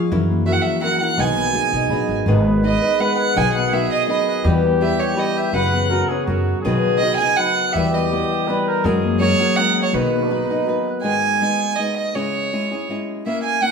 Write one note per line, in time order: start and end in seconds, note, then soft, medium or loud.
0.00 0.15 F3 medium
0.00 0.35 B3 medium
0.00 0.11 C#4 soft
0.00 2.11 C#4 medium
0.00 0.11 F4 soft
0.00 0.11 G#4 soft
0.00 1.54 G#4 medium
0.00 0.17 D#5 medium
0.00 0.17 F5 medium
0.00 1.01 C#6 medium
0.00 0.98 G#6 medium
0.11 0.57 F#2 loud
0.11 1.22 E3 medium
0.11 0.45 F#3 medium
0.11 0.46 C#4 medium
0.11 0.46 E4 medium
0.11 0.46 A#4 medium
0.29 1.42 A#3 medium
0.46 0.81 F#3 medium
0.46 0.81 C#4 medium
0.46 0.81 E4 medium
0.46 2.90 F#4 medium
0.46 0.82 A#4 medium
0.46 0.54 E5 medium
0.53 0.63 F#5 medium
0.62 0.82 E5 medium
0.62 1.24 E5 medium
0.82 1.00 F#3 medium
0.82 1.00 C#4 medium
0.82 1.00 E4 medium
0.82 0.99 A#4 medium
0.82 1.00 F#5 medium
0.82 1.42 A#5 medium
1.00 1.18 C#4 soft
1.00 1.18 E4 soft
1.00 1.17 A#4 soft
1.00 1.21 F#5 medium
1.00 2.06 F#6 medium
1.17 1.53 B1 medium
1.17 1.53 B2 medium
1.17 2.27 D#3 medium
1.17 1.52 F#3 medium
1.17 1.54 B3 medium
1.17 1.54 D#4 medium
1.17 1.53 G#4 medium
1.17 2.11 G#5 medium
1.36 2.47 B3 medium
1.53 1.72 F#3 medium
1.53 1.73 B3 medium
1.53 1.72 D#4 soft
1.53 2.64 G#4 medium
1.53 1.72 G#4 medium
1.72 1.88 B1 medium
1.72 1.89 F#3 soft
1.72 1.90 B3 soft
1.72 1.90 D#4 soft
1.72 1.90 G#4 medium
1.72 2.83 D#5 medium
1.89 2.07 A#1 medium
1.89 2.27 F#3 medium
1.89 2.27 B3 medium
1.89 2.28 D#4 medium
1.89 2.27 G#4 medium
1.89 3.01 B5 medium
2.08 2.25 G#1 medium
2.08 3.15 G#6 medium
2.26 2.74 G#1 loud
2.26 2.64 G#2 medium
2.26 2.64 D#3 medium
2.26 3.35 D#3 medium
2.26 2.61 G#3 medium
2.26 2.62 B3 medium
2.26 2.62 D#4 medium
2.26 3.39 B4 medium
2.26 2.63 B4 medium
2.47 3.56 B3 medium
2.63 2.82 G#3 soft
2.63 2.82 B3 medium
2.63 2.81 D#4 medium
2.63 4.88 G#4 medium
2.63 2.81 B4 medium
2.63 3.02 D#5 medium
2.82 2.98 G#3 soft
2.82 2.99 B3 soft
2.82 2.99 D#4 soft
2.82 2.99 B4 soft
2.82 3.92 D#5 medium
2.99 3.36 G#3 medium
2.99 3.36 B3 medium
2.99 3.35 D#4 medium
2.99 3.37 B4 medium
2.99 3.18 F#5 medium
2.99 4.10 B5 medium
3.18 3.39 F#5 medium
3.18 4.24 G#6 medium
3.36 3.83 B1 loud
3.36 3.73 B2 medium
3.36 4.50 D#3 medium
3.36 3.73 D#3 medium
3.36 3.71 F#3 medium
3.36 3.73 B3 medium
3.36 3.73 D#4 medium
3.36 4.46 G#4 medium
3.36 3.73 B4 medium
3.36 3.53 G#5 medium
3.54 4.64 B3 medium
3.54 3.74 F#5 medium
3.72 4.06 F#3 medium
3.72 4.08 B3 medium
3.72 4.08 D#4 medium
3.72 4.88 F#4 medium
3.72 4.09 B4 medium
3.72 3.92 E5 medium
3.93 4.52 D#5 medium
3.93 4.08 D#5 medium
4.07 4.44 F#3 soft
4.07 4.44 B3 medium
4.07 4.45 D#4 medium
4.07 4.45 B4 medium
4.07 4.34 D#5 medium
4.07 5.16 B5 medium
4.28 4.88 F#6 medium
4.44 4.92 E2 loud
4.44 4.81 E3 medium
4.44 5.59 E3 medium
4.44 4.80 G3 medium
4.44 4.80 B3 medium
4.44 5.53 G4 medium
4.44 4.80 G4 medium
4.44 4.81 B4 medium
4.64 5.73 B3 medium
4.81 5.15 G3 medium
4.81 5.15 B3 medium
4.81 5.16 G4 medium
4.81 5.96 G4 medium
4.81 5.16 B4 medium
4.81 5.01 E5 medium
4.99 5.21 C#5 medium
4.99 6.71 E5 medium
5.16 5.53 G3 medium
5.16 5.54 B3 medium
5.16 5.54 G4 medium
5.16 5.53 B4 medium
5.16 5.39 D#5 medium
5.16 6.33 B5 medium
5.36 5.56 E5 medium
5.36 5.96 G6 medium
5.53 6.01 F#2 medium
5.53 6.33 C#3 medium
5.53 5.89 F#3 medium
5.53 5.90 C#4 medium
5.53 5.91 F#4 medium
5.53 5.91 B4 medium
5.53 5.91 F#5 medium
5.73 6.33 B3 medium
5.90 6.10 F#3 soft
5.90 6.10 C#4 medium
5.90 7.02 F#4 medium
5.90 6.09 F#4 medium
5.90 6.10 A#4 medium
5.90 6.09 B4 soft
6.09 6.28 C#4 soft
6.09 6.28 F#4 soft
6.09 6.25 G#4 medium
6.09 6.28 B4 soft
6.09 8.01 C#5 medium
6.26 6.52 F#2 loud
6.26 6.63 F#3 medium
6.26 6.65 C#4 medium
6.26 6.61 F#4 medium
6.26 6.65 G#4 medium
6.26 6.90 A#5 medium
6.30 6.65 A#4 medium
6.47 7.52 G#6 medium
6.62 7.13 B1 medium
6.62 7.02 B2 medium
6.62 7.81 D#3 medium
6.62 7.02 D#3 medium
6.62 7.00 F#3 medium
6.62 7.01 B3 medium
6.62 7.01 D#4 medium
6.62 7.44 G#4 medium
6.62 7.01 B4 loud
6.84 7.94 B3 medium
6.98 7.21 F#3 medium
6.98 7.21 B3 medium
6.98 7.17 D#5 loud
7.02 7.20 D#4 medium
7.02 8.17 F#4 medium
7.02 7.20 B4 medium
7.17 7.39 B4 medium
7.17 7.81 D#5 medium
7.17 7.38 G#5 medium
7.22 7.37 F#3 soft
7.22 7.38 B3 soft
7.22 7.38 D#4 soft
7.36 7.76 F#3 medium
7.36 7.75 B3 medium
7.36 7.76 D#4 soft
7.36 7.75 B4 medium
7.36 7.74 F#5 medium
7.36 8.48 B5 medium
7.58 8.17 F#6 medium
7.73 8.22 E2 medium
7.73 8.90 E3 medium
7.73 8.12 E3 medium
7.73 8.11 G3 medium
7.73 8.12 B3 medium
7.73 8.49 G4 medium
7.73 8.12 G4 medium
7.73 8.12 B4 medium
7.73 7.95 E5 medium
7.94 9.10 B3 medium
7.94 8.48 D#5 medium
8.11 8.47 G3 soft
8.11 8.48 B3 medium
8.11 8.91 G4 medium
8.11 8.48 G4 medium
8.11 8.49 B4 medium
8.31 9.99 E5 medium
8.47 8.85 G3 medium
8.47 8.85 B3 medium
8.47 8.85 G4 medium
8.47 8.69 B4 medium
8.47 8.85 B4 medium
8.47 9.10 B5 medium
8.67 8.87 A#4 medium
8.67 8.91 G6 medium
8.84 9.32 F#2 loud
8.84 9.21 F#3 medium
8.84 9.99 F#3 medium
8.84 9.19 G#3 medium
8.84 9.19 C#4 medium
8.84 9.19 F#4 medium
8.84 9.92 G#4 medium
8.84 9.20 A#4 medium
9.04 10.18 A#3 medium
9.20 9.40 G#3 medium
9.20 9.39 C#4 soft
9.20 9.38 F#4 medium
9.20 11.48 G#4 medium
9.20 9.38 A#4 medium
9.20 9.58 C#5 loud
9.39 9.57 C#4 soft
9.39 9.57 F#4 soft
9.39 9.57 A#4 soft
9.39 11.01 F#5 medium
9.56 9.93 G#3 medium
9.56 9.93 C#4 medium
9.56 9.94 F#4 medium
9.56 9.94 A#4 medium
9.56 9.76 F#5 loud
9.56 10.18 A#5 medium
9.76 10.81 G#6 medium
9.83 9.96 C#5 medium
9.93 10.41 B1 medium
9.93 10.30 B2 medium
9.93 11.10 D#3 medium
9.93 10.30 D#3 medium
9.93 10.29 F#3 medium
9.93 10.29 B3 medium
9.93 10.30 D#4 medium
9.93 10.25 F#4 medium
9.93 10.30 B4 medium
9.93 10.87 B4 medium
10.12 13.23 B3 medium
10.24 10.32 D4 soft
10.29 10.50 F#3 medium
10.29 10.50 B3 medium
10.29 10.88 D#4 medium
10.29 10.50 D#4 medium
10.29 12.73 F#4 medium
10.29 10.49 B4 medium
10.49 10.66 F#3 soft
10.49 10.67 B3 medium
10.49 10.67 D#4 medium
10.49 10.68 B4 soft
10.49 12.28 D#5 medium
10.67 11.04 F#3 soft
10.67 11.03 B3 medium
10.67 11.04 D#4 medium
10.67 11.04 B4 medium
10.67 12.02 B5 medium
10.88 11.94 F#6 medium
11.03 11.42 G#2 medium
11.03 11.42 D#3 medium
11.03 11.40 G#3 medium
11.03 11.41 B3 medium
11.03 11.41 D#4 medium
11.03 11.42 G#4 medium
11.03 11.77 G#5 medium
11.41 11.77 G#3 medium
11.41 11.78 B3 medium
11.41 11.78 D#4 medium
11.41 11.79 G#4 medium
11.76 12.14 G#3 soft
11.76 12.15 B3 medium
11.76 12.15 D#4 medium
11.76 11.97 D#5 medium
11.80 12.14 G#4 medium
11.98 12.17 D#5 medium
12.15 12.52 C#3 medium
12.15 12.51 G#3 medium
12.15 12.52 C#4 medium
12.15 12.52 E4 medium
12.15 12.52 G#4 medium
12.15 12.88 C#5 medium
12.52 12.71 G#3 soft
12.52 12.72 C#4 medium
12.52 12.70 E4 medium
12.52 12.70 G#4 medium
12.71 12.89 C#4 soft
12.71 12.89 E4 soft
12.71 12.89 G#4 medium
12.89 13.25 G#3 medium
12.89 13.25 C#4 medium
12.89 13.26 E4 medium
12.89 13.26 G#4 medium
13.26 13.61 A#3 medium
13.26 13.61 C#4 medium
13.26 13.62 E4 medium
13.26 13.62 A#4 medium
13.26 13.43 E5 medium
13.44 13.64 G#5 medium
13.62 13.72 A#3 medium
13.62 13.72 C#4 medium
13.62 13.72 E4 medium
13.62 13.72 A#4 medium
13.62 13.72 F#5 loud